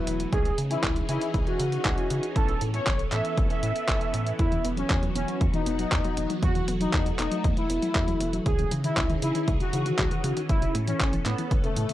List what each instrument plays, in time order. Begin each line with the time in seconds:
Already playing: string machine E3 F#3 A3 F#4, grand piano F#3 B3 E4 B4, analog polysynth E4
0.07 analog synth bass E1, closed hi-hat
0.20 closed hi-hat
0.32 analog synth bass C#2, grand piano E3 C#4 D#4 G#4, string machine C#4 D#4 G#4, analog polysynth G#4, kick, closed hi-hat
0.45 closed hi-hat
0.58 analog synth bass C#3, closed hi-hat
0.71 grand piano E3 C#4 D#4 G#4, analog polysynth E4, closed hi-hat
0.83 analog synth bass C#2, kick, clap, closed hi-hat
0.96 closed hi-hat
1.09 analog synth bass C#3, grand piano E3 C#4 D#4 G#4, analog polysynth E4, closed hi-hat
1.21 closed hi-hat
1.34 analog synth bass C#2, kick, closed hi-hat
1.47 grand piano E3 C#4 D#4 G#4, analog polysynth F#4, closed hi-hat
1.60 analog synth bass C#3, closed hi-hat
1.72 closed hi-hat
1.85 analog synth bass C#2, grand piano E3 C#4 D#4 G#4, kick, clap, closed hi-hat
1.98 closed hi-hat
2.10 analog synth bass C#3, closed hi-hat
2.23 closed hi-hat
2.36 analog synth bass A1, grand piano E3 B3 C#4 A4, string machine B3 A4, analog polysynth A4, kick, closed hi-hat
2.48 closed hi-hat
2.61 analog synth bass A2, closed hi-hat
2.74 grand piano E3 B3 C#4 A4, analog polysynth C#5, closed hi-hat
2.87 analog synth bass A1, kick, clap, closed hi-hat
2.99 closed hi-hat
3.12 analog synth bass A2, grand piano E3 B3 C#4 A4, analog polysynth E5, clap, closed hi-hat
3.25 closed hi-hat
3.37 analog synth bass A1, kick, closed hi-hat
3.50 grand piano E3 B3 C#4 A4, analog polysynth E5, closed hi-hat
3.63 analog synth bass A2, closed hi-hat
3.76 closed hi-hat
3.88 analog synth bass A1, grand piano E3 B3 C#4 A4, kick, clap, closed hi-hat
4.01 closed hi-hat
4.14 analog synth bass A2, closed hi-hat
4.27 closed hi-hat
4.39 analog synth bass E2, synth arpeggio sound E3, string machine F#3 F#4, analog polysynth E4, kick, closed hi-hat
4.52 synth arpeggio sound E3, closed hi-hat
4.65 analog synth bass E1, synth arpeggio sound B3, closed hi-hat
4.77 synth arpeggio sound F#3, analog polysynth C#4, closed hi-hat
4.90 analog synth bass E2, synth arpeggio sound E3, kick, clap, closed hi-hat
5.03 synth arpeggio sound F#3, closed hi-hat
5.15 analog synth bass E1, synth arpeggio sound B3, analog polysynth C#4, closed hi-hat
5.28 synth arpeggio sound F#3, closed hi-hat
5.41 analog synth bass E2, synth arpeggio sound E3, kick, closed hi-hat
5.54 synth arpeggio sound E3, analog polysynth D#4, closed hi-hat
5.66 analog synth bass E1, synth arpeggio sound B3, closed hi-hat
5.79 synth arpeggio sound F#3, closed hi-hat
5.92 analog synth bass E2, synth arpeggio sound E3, kick, clap, closed hi-hat
6.04 synth arpeggio sound F#3, closed hi-hat
6.17 analog synth bass E1, synth arpeggio sound B3, closed hi-hat
6.30 synth arpeggio sound F#3, closed hi-hat
6.42 analog synth bass E2, synth arpeggio sound E3, string machine A3, analog polysynth F#4, kick, closed hi-hat
6.55 synth arpeggio sound E3, closed hi-hat
6.68 analog synth bass E1, synth arpeggio sound B3, closed hi-hat
6.81 synth arpeggio sound F#3, analog polysynth D#4, closed hi-hat
6.93 analog synth bass E2, synth arpeggio sound E3, kick, clap, closed hi-hat
7.06 synth arpeggio sound F#3, closed hi-hat
7.19 analog synth bass E1, synth arpeggio sound B3, analog polysynth D#4, clap, closed hi-hat
7.31 synth arpeggio sound F#3, closed hi-hat
7.44 analog synth bass E2, synth arpeggio sound E3, kick, closed hi-hat
7.57 synth arpeggio sound E3, analog polysynth E4, closed hi-hat
7.70 analog synth bass E1, synth arpeggio sound B3, closed hi-hat
7.82 synth arpeggio sound F#3, closed hi-hat
7.95 analog synth bass E2, synth arpeggio sound E3, kick, clap, closed hi-hat
8.08 synth arpeggio sound F#3, closed hi-hat
8.21 analog synth bass E1, synth arpeggio sound B3, closed hi-hat
8.33 synth arpeggio sound F#3, closed hi-hat
8.46 analog synth bass C#2, synth arpeggio sound C#3, string machine E3 C#4 D#4 G#4, analog polysynth G#4, kick, closed hi-hat
8.59 synth arpeggio sound C#3, closed hi-hat
8.71 analog synth bass C#3, synth arpeggio sound E3, closed hi-hat
8.84 synth arpeggio sound D#3, analog polysynth E4, closed hi-hat
8.97 analog synth bass C#2, synth arpeggio sound C#3, kick, clap, closed hi-hat
9.10 synth arpeggio sound D#3, closed hi-hat
9.22 analog synth bass C#3, synth arpeggio sound E3, analog polysynth E4, closed hi-hat
9.35 synth arpeggio sound D#3, closed hi-hat
9.48 analog synth bass C#2, synth arpeggio sound C#3, kick, closed hi-hat
9.60 synth arpeggio sound C#3, analog polysynth F#4, closed hi-hat
9.73 analog synth bass C#3, synth arpeggio sound E3, closed hi-hat
9.86 synth arpeggio sound D#3, closed hi-hat
9.99 analog synth bass C#2, synth arpeggio sound C#3, kick, clap, closed hi-hat
10.11 synth arpeggio sound D#3, closed hi-hat
10.24 analog synth bass C#3, synth arpeggio sound E3, closed hi-hat
10.37 synth arpeggio sound D#3, closed hi-hat
10.49 analog synth bass A1, synth arpeggio sound C#3, string machine B3 A4, analog polysynth E4, kick, closed hi-hat
10.62 synth arpeggio sound C#3, closed hi-hat
10.75 analog synth bass A2, synth arpeggio sound A3, closed hi-hat
10.87 synth arpeggio sound E3, analog polysynth C#4, closed hi-hat
11.00 analog synth bass A1, synth arpeggio sound C#3, kick, clap, closed hi-hat
11.13 synth arpeggio sound E3, closed hi-hat
11.26 analog synth bass A2, synth arpeggio sound A3, analog polysynth B3, clap, closed hi-hat
11.38 synth arpeggio sound E3, closed hi-hat
11.51 analog synth bass A1, synth arpeggio sound C#3, kick, closed hi-hat
11.64 synth arpeggio sound C#3, analog polysynth A3, closed hi-hat
11.76 analog synth bass A2, synth arpeggio sound C#3, closed hi-hat
11.89 synth arpeggio sound C#3, closed hi-hat